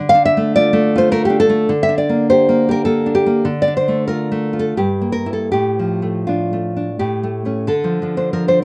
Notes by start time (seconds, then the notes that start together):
Already playing: D3
0.09 F5
0.15 D4
0.25 E5
0.37 A3
0.56 F4 D5
0.73 A3
0.96 F4 C5
1.12 A3 A#4
1.25 G4
1.30 D4
1.40 A4
1.49 A3
1.69 D3
1.83 E5
1.89 D4
1.98 D5
2.09 A#3
2.30 G4 C5
2.49 A#3
2.69 G4 A#4
2.85 A#3 A4
3.06 D4
3.15 G4
3.26 A#3
3.45 D3
3.62 D5
3.68 D4
3.77 C5
3.88 A3
4.08 F4 A#4
4.32 A3
4.53 F4
4.59 A4
4.77 G2 G4
5.01 A#3
5.12 A#4
5.26 A#3 E4
5.33 A4
5.52 A2 G4
5.79 F3
6.02 A3
6.27 D4 F4
6.53 A3
6.77 D4
6.99 A2 G4
7.23 A3
7.45 A3 C#4
7.67 D3 A4
7.84 F3
8.02 F3 D4
8.17 D4 C5
8.33 F3 A#4
8.48 D4 C5